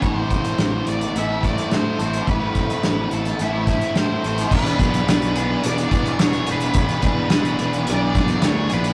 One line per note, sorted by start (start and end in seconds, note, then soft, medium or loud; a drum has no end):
0.01 0.22 A1 medium
0.01 1.14 A2 medium
0.01 1.16 E3 medium
0.01 1.16 A3 medium
0.01 1.16 C4 medium
0.01 1.17 E4 medium
0.01 1.18 A4 medium
0.01 0.14 C#5 loud
0.01 kick loud
0.01 closed hi-hat medium
0.14 0.88 C5 loud
0.30 0.50 E1 medium
0.30 kick medium
0.30 closed hi-hat medium
0.44 closed hi-hat medium
0.58 0.79 A1 medium
0.58 snare loud
0.58 closed hi-hat medium
0.86 1.06 A1 medium
0.86 1.17 D5 medium
0.86 closed hi-hat medium
1.01 closed hi-hat medium
1.14 1.53 A1 medium
1.14 1.72 A2 medium
1.14 2.28 E3 medium
1.14 1.46 A3 medium
1.14 1.46 C4 medium
1.14 1.45 E5 medium
1.14 closed hi-hat medium
1.18 1.46 E4 medium
1.18 1.43 A4 medium
1.43 1.72 C4 medium
1.43 1.74 E4 medium
1.43 1.74 A4 medium
1.43 1.73 D5 medium
1.43 kick medium
1.43 closed hi-hat medium
1.48 1.71 A3 medium
1.58 closed hi-hat medium
1.70 1.90 A2 medium
1.70 2.02 A3 medium
1.70 2.00 C4 medium
1.70 2.02 C5 medium
1.70 snare medium
1.70 closed hi-hat medium
1.74 2.00 E4 medium
1.74 1.98 A4 medium
1.99 2.19 A1 medium
1.99 2.28 A3 soft
1.99 2.29 C4 medium
1.99 2.30 E4 medium
1.99 2.30 A4 medium
1.99 2.29 C5 medium
1.99 closed hi-hat medium
2.13 closed hi-hat medium
2.27 2.47 A1 medium
2.27 3.38 A2 medium
2.27 3.39 E3 medium
2.27 3.40 A3 medium
2.27 3.40 C4 medium
2.27 3.15 B4 medium
2.27 kick loud
2.27 closed hi-hat soft
2.31 3.41 E4 medium
2.31 3.42 A4 medium
2.55 2.75 E1 medium
2.55 kick medium
2.55 closed hi-hat medium
2.70 closed hi-hat medium
2.83 3.03 A1 medium
2.83 snare loud
2.83 closed hi-hat medium
3.11 3.31 A1 medium
3.11 3.42 A4 medium
3.11 closed hi-hat medium
3.25 closed hi-hat medium
3.39 3.78 A1 medium
3.39 3.96 A2 medium
3.39 3.96 E3 medium
3.39 3.70 A3 medium
3.39 3.69 C4 medium
3.39 3.93 E4 medium
3.39 3.68 E4 medium
3.39 3.67 A4 medium
3.39 closed hi-hat medium
3.67 3.93 A3 soft
3.67 3.95 C4 medium
3.67 3.95 E4 medium
3.67 3.97 A4 medium
3.67 kick medium
3.67 snare soft
3.67 closed hi-hat medium
3.81 closed hi-hat medium
3.94 4.15 A2 medium
3.94 4.26 A3 medium
3.94 4.25 C4 medium
3.94 4.24 E4 medium
3.94 4.22 A4 medium
3.94 4.54 C5 medium
3.94 snare loud
3.94 closed hi-hat medium
4.23 4.43 A1 medium
4.23 4.52 A3 medium
4.23 4.52 C4 medium
4.23 4.51 E4 medium
4.23 4.50 A4 medium
4.23 closed hi-hat medium
4.38 closed hi-hat medium
4.51 4.75 E1 medium
4.51 5.07 E3 medium
4.51 4.83 B3 medium
4.51 4.81 D4 loud
4.51 5.61 B4 medium
4.51 kick loud
4.51 crash loud
4.56 4.80 G#4 loud
4.66 closed hi-hat medium
4.79 5.03 B1 medium
4.79 5.10 D4 medium
4.79 5.10 G#4 medium
4.79 kick medium
4.79 closed hi-hat medium
4.84 5.08 B3 medium
4.94 closed hi-hat medium
5.07 5.54 B1 loud
5.07 5.63 E3 medium
5.07 5.39 B3 medium
5.07 5.38 D4 medium
5.07 snare loud
5.07 closed hi-hat loud
5.11 5.36 G#4 medium
5.22 closed hi-hat medium
5.36 5.66 D4 medium
5.36 5.66 G#4 medium
5.36 closed hi-hat medium
5.40 5.65 B3 medium
5.64 5.88 E1 medium
5.64 6.19 E3 medium
5.64 5.95 B3 loud
5.64 5.93 D4 loud
5.64 5.90 G#4 loud
5.64 6.21 D5 loud
5.64 closed hi-hat loud
5.78 closed hi-hat medium
5.91 6.15 E1 medium
5.91 6.22 D4 medium
5.91 6.22 G#4 medium
5.91 kick medium
5.91 closed hi-hat medium
5.95 6.21 B3 medium
6.06 closed hi-hat soft
6.19 6.44 E1 loud
6.19 6.75 E3 medium
6.19 6.51 B3 medium
6.19 6.49 D4 medium
6.19 6.50 C#5 medium
6.19 snare loud
6.19 closed hi-hat loud
6.24 6.46 G#4 medium
6.33 closed hi-hat soft
6.47 6.71 E1 medium
6.47 6.77 D4 medium
6.47 6.78 G#4 medium
6.47 closed hi-hat medium
6.51 6.77 B3 medium
6.51 7.90 B4 medium
6.60 closed hi-hat soft
6.74 6.99 E1 loud
6.74 7.31 E3 medium
6.74 7.07 B3 medium
6.74 kick loud
6.74 closed hi-hat loud
6.78 7.06 D4 loud
6.78 7.03 G#4 loud
6.89 closed hi-hat soft
7.02 7.27 E1 medium
7.02 7.34 D4 medium
7.02 7.34 G#4 medium
7.02 kick medium
7.02 closed hi-hat medium
7.08 7.33 B3 medium
7.30 7.55 E1 medium
7.30 7.85 E3 medium
7.30 7.61 B3 medium
7.30 snare loud
7.30 closed hi-hat loud
7.34 7.60 D4 medium
7.34 7.58 G#4 medium
7.45 closed hi-hat soft
7.59 7.84 E1 medium
7.59 7.87 B3 medium
7.59 7.88 D4 medium
7.59 7.88 G#4 medium
7.59 closed hi-hat medium
7.73 closed hi-hat soft
7.86 8.35 B1 loud
7.86 8.41 E3 loud
7.86 8.18 B3 loud
7.86 8.16 D4 loud
7.86 8.14 G#4 loud
7.86 closed hi-hat loud
7.90 8.46 D5 loud
8.15 8.43 B3 medium
8.15 8.44 D4 medium
8.15 8.45 G#4 medium
8.15 kick medium
8.15 snare soft
8.15 closed hi-hat medium
8.28 closed hi-hat soft
8.42 8.67 D2 medium
8.42 8.93 E3 medium
8.42 8.73 B3 medium
8.42 8.71 D4 medium
8.42 snare loud
8.42 closed hi-hat loud
8.46 8.68 G#4 medium
8.46 8.73 C#5 loud
8.70 8.93 A#1 medium
8.70 8.93 B3 medium
8.70 8.93 D4 medium
8.70 8.93 G#4 medium
8.70 8.93 B4 medium
8.70 closed hi-hat medium
8.84 closed hi-hat soft